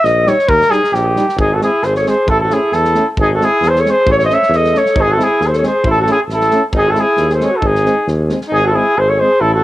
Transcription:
0.03 A#1 D#5, snare
0.25 G3 D#4 C#5, snare
0.39 snare
0.48 D#2 A#4, kick
0.61 snare
0.69 G3 D#4 G#4, snare
0.84 snare
0.92 A#1 G4, snare
1.16 G3 D#4, snare
1.29 snare
1.36 G#1 D#4, kick
1.40 G#4
1.53 F#4 A4
1.60 G#3 C4 E4 G#4, snare
1.82 G#1 C5, snare
1.86 G#4
1.95 A4 C#5, snare
2.05 G#3 C4 G#4 C5, snare
2.26 A1 E4 A4, kick
2.41 F#4 A4
2.49 A3 C#4 E4 G#4, snare
2.72 E2 E4 A4, snare
2.84 snare
2.94 A3 C#4, snare
3.17 G#1 G#4, kick
3.22 D#4
3.34 F#4 A4
3.39 G#3 C4, snare
3.44 E4 G#4
3.61 E2 G#4, snare
3.68 C5
3.75 snare
3.79 A4 C#5
3.85 G#3 C4, snare
3.89 G#4 C5
4.05 A1 G#4, kick
4.10 A4 C#5
4.18 A4 C#5, snare
4.23 C5 D#5
4.28 A3 C#4, snare
4.33 C#5 E5
4.42 snare
4.49 E2, snare
4.56 A4 D#5
4.64 snare
4.73 A3 C#4 A4, snare
4.78 C#5
4.86 snare
4.95 G#1 D#4, kick
5.01 G#4
5.08 F#4 A4
5.17 G#3 C4 E4, snare
5.23 G#4
5.40 D#2 G#4, snare
5.47 C5
5.52 A4, snare
5.57 C4 C#5
5.62 G#3 G#4 C5, snare
5.83 A1 E4, kick
5.91 A4
5.99 F#4 A4
6.05 A3 C#4 E4, snare
6.12 G#4
6.27 A1, snare
6.31 E4 A4
6.41 snare
6.50 A3 C#4, snare
6.72 G#1 D#4, kick
6.78 G#4
6.88 F#4 A4
6.94 G#3 C4 E4, snare
7.00 G#4
7.16 D#2, snare
7.30 G#4 C5, snare
7.38 G#3 C4 A4, snare
7.44 C#5
7.50 F#4
7.57 A4
7.61 G#1 D#4, kick
7.67 G#4
7.75 snare
7.85 G#3 C4, snare
8.07 D#2, snare
8.29 G#3 C4, snare
8.41 snare
8.48 G#1 D#4
8.54 G#4
8.62 F#4
8.66 A4
8.72 G#3 C4 E4 G#4
8.96 G#1 G#4 C5
9.09 A4 C#5
9.18 G#3 C4 G#4 C5
9.40 A1 E4 A4
9.54 F#4 A4

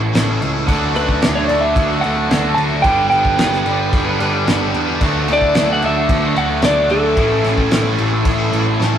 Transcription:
Already playing: A1 A2 E3 A3 C#4 E4 A4 C#5
0.01 muted overdriven electric guitar stroke
0.13 A1 A2 A3 C#4 E4 A4, snare, crash
0.41 C#2 A3 C#4 E4 A4, crash
0.54 C#4 E4 A4
0.67 D2 D3 F#3 A3 D4 F#4 A4 F#5, kick, crash
0.94 D2 D3 C#4 D4 F#4 A4 B4, crash
1.09 kick
1.21 D2 D3 D4 F#4 A4, snare, crash
1.35 D4 C#5
1.47 D2 D3 D4 E4 F#4 D5, crash
1.52 A4
1.61 F#4 E5, muted overdriven electric guitar stroke
1.76 D2, kick, crash
1.88 D4 F#4 A4
2.01 D2 D3 A3 D4 F#4 A4 F#5, crash
2.05 A4
2.16 muted overdriven electric guitar stroke
2.29 D2 D3 A3 D4 F#4 A4, snare, crash
2.54 D2 D3 D4 B4 A5, crash
2.59 F#4 A4
2.71 D4 F#4 A4
2.82 G1 G2 D3 G3 D4 G4 B4 D5 G5, kick, crash
2.86 B3 D4 B4
3.10 G1 G3 D4 B4 G5, crash
3.14 B3 B4
3.25 kick
3.38 G1 G3 B3 D4 B4, snare, crash
3.53 snare
3.64 G1 G3 B3 D4 B4, crash
3.79 muted overdriven electric guitar stroke
3.93 G1, kick, crash
4.05 B3 D4 B4
4.18 G1 G2 D3 G3 B3 D4 B4, crash
4.33 muted overdriven electric guitar stroke
4.46 G1 G2 D3 G3 B3 D4 B4, snare, crash
4.50 G3
4.72 E2 G3 B3 D4 B4, crash
4.86 B3 D4 B4
4.99 D2 D3 F#3 A3 D4 F#4 A4 D5, kick, crash
5.04 D4 A4
5.28 D2 D3 D4 E4 F#4 A4, crash
5.33 D5
5.42 kick
5.54 D2 D3 D4 F#4 A4, snare, crash
5.70 A4 F#5
5.82 D2 D3 D4 F#4 A4, crash
5.86 E5
5.96 muted overdriven electric guitar stroke
6.09 D2, kick, crash
6.23 D4 F#4 A4
6.36 D2 D3 A3 D4 F#4 A4 F#5, crash
6.49 muted overdriven electric guitar stroke
6.61 D2 D3 A3 D4 F#4 A4 D5, snare, crash
6.66 D4
6.89 D2 D3 A3 D4 F#4 A4, crash
7.02 D4 F#4 A4
7.16 A1 A2 E3 A3 C#4 E4 A4 C#5, kick, crash
7.43 A1 A3 C#4 E4 A4, snare, crash
7.58 kick
7.71 A1 A2 A3 C#4 E4 A4, snare, crash
7.98 A1 A3 C#4 E4 A4, crash
8.12 muted overdriven electric guitar stroke
8.25 A1, kick, crash
8.38 C#4 E4 A4
8.52 A1 A2 E3 A3 C#4 E4 A4, crash
8.66 muted overdriven electric guitar stroke
8.79 A1 A2 E3 A3 C#4 E4 A4, snare

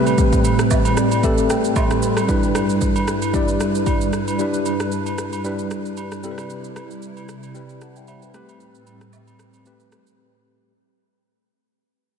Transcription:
Already playing: A2 G3 A3 C4 G4 B4
0.00 C4
0.07 high agogo, shaker
0.18 kick, shaker
0.33 kick, shaker
0.44 high agogo, shaker
0.59 cross-stick, shaker
0.71 kick, low woodblock, shaker
0.85 high agogo, shaker
0.97 D5, cross-stick, shaker
1.11 high agogo, shaker
1.23 A3 C4 G4 A4 E5, kick, shaker
1.38 shaker
1.50 G5, cross-stick, shaker
1.64 shaker
1.76 C6, kick, high agogo, low woodblock, shaker
1.91 cross-stick, shaker
2.02 B5, shaker
2.17 cross-stick, high agogo, shaker
2.28 G2 G3 D4 E4 B4, kick, shaker
2.43 shaker
2.55 cross-stick, high agogo, shaker
2.69 shaker
2.81 kick, shaker
2.96 high agogo, shaker
3.08 cross-stick, shaker
3.22 high agogo, shaker
3.33 G3 D4 E4 D5, kick, shaker
3.48 shaker
3.60 cross-stick, shaker
3.75 shaker
3.86 kick, high agogo, shaker
4.01 shaker
4.13 cross-stick, shaker
4.28 high agogo, shaker
4.39 G3 D4 E4 B4, shaker
4.54 shaker
4.66 high agogo, shaker
4.80 cross-stick, shaker
4.92 shaker
5.06 high agogo, shaker
5.18 cross-stick, shaker
5.33 high agogo, shaker
5.44 G3 D4 E4 B4, shaker
5.59 shaker
5.71 cross-stick, shaker
5.85 shaker
5.97 high agogo, shaker
6.12 cross-stick, shaker
6.23 C3 G3 C4 E4 A4, shaker
6.31 B4
6.38 cross-stick, high agogo, shaker
6.50 shaker
6.64 shaker
6.76 cross-stick, high agogo, shaker
6.91 shaker
7.02 shaker
7.17 high agogo, shaker
7.29 cross-stick, shaker
7.43 high agogo, shaker
7.55 G3 C4 E4 B4, shaker
7.69 shaker
7.81 F#5 A5, cross-stick, shaker
7.96 E5 G5, shaker
8.07 C5 E5, high agogo, shaker
8.22 G4 B4, shaker
8.34 A2 G3 A3 C4 G4 B4, cross-stick, shaker
8.49 high agogo, shaker
8.60 shaker
8.75 shaker
8.87 high agogo, shaker
9.01 cross-stick, shaker
9.13 low woodblock, shaker
9.27 high agogo, shaker
9.39 cross-stick, shaker
9.54 high agogo, shaker
9.65 A3 C4 G4 B4, shaker
9.80 shaker
9.92 cross-stick, shaker
10.07 shaker

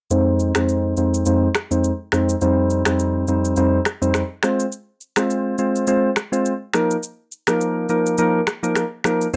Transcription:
0.11 F2 G#3 C4 D#4 C5, shaker
0.39 shaker
0.55 F2 G#3 C4 D#4 C5, finger snap, cross-stick, shaker
0.69 shaker
0.97 F2 G#3 C4 D#4 C5, shaker
1.14 shaker
1.26 F2 G#3 C4 D#4 C5, shaker
1.55 finger snap, cross-stick, shaker
1.71 F2 G#3 C4 D#4 C5, shaker
1.84 shaker
2.12 F2 G#3 C4 D#4 C5, finger snap, cross-stick, shaker
2.29 shaker
2.41 F2 G3 C4 D#4 C5, shaker
2.70 shaker
2.85 F2 G3 C4 D#4 C5, finger snap, cross-stick, shaker
2.99 shaker
3.27 F2 G3 C4 D#4 C5, shaker
3.45 shaker
3.56 F2 G3 C4 D#4 C5, shaker
3.85 finger snap, cross-stick, shaker
4.02 F2 G3 C4 D#4 C5, shaker
4.14 finger snap, cross-stick, shaker
4.43 G#3 C4 F4 C5, finger snap, cross-stick, shaker
4.60 shaker
4.72 shaker
5.01 shaker
5.16 G#3 C4 F4 C5, finger snap, cross-stick, shaker
5.30 shaker
5.58 G#3 C4 F4 C5, shaker
5.76 shaker
5.87 G#3 C4 F4 C5, shaker
6.16 finger snap, cross-stick, shaker
6.32 G#3 C4 F4 C5, shaker
6.46 shaker
6.74 F3 A#3 D#4 A#4, finger snap, cross-stick, shaker
6.91 shaker
7.03 shaker
7.32 shaker
7.47 F3 A#3 D#4 A#4, finger snap, cross-stick, shaker
7.61 shaker
7.89 F3 A#3 D#4 A#4, shaker
8.06 shaker
8.18 F3 A#3 D#4 A#4, shaker
8.47 finger snap, cross-stick, shaker
8.63 F3 A#3 D#4 A#4, shaker
8.76 finger snap, cross-stick, shaker
9.04 F3 A#3 D#4 A#4, finger snap, cross-stick, shaker
9.21 shaker

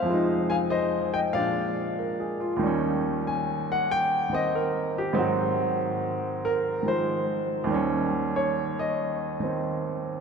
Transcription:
Already playing: C5 F5
0.02 F2 F3
0.10 G#3 D#4
0.50 F5 G#5
0.70 C5 D#5
1.14 D#5 G5
1.33 A#2 F3 G#3 D5 F5
1.38 D4
1.99 A#4
2.20 G#4
2.40 F4
2.56 D#2 D#3
2.63 G3 C#4
3.27 G#5
3.72 F#5
3.91 G5
4.30 D#3 C4
4.34 D#5
4.55 A#4
4.98 G4
5.13 G#2 D#3 F#3 C4
5.19 F#4
6.45 A#4
6.83 D#3 F3 G#3
6.88 C5
7.64 D#2 D#3
7.71 G3 C#4
8.36 C#5
8.79 D#5
9.40 D#3 C4

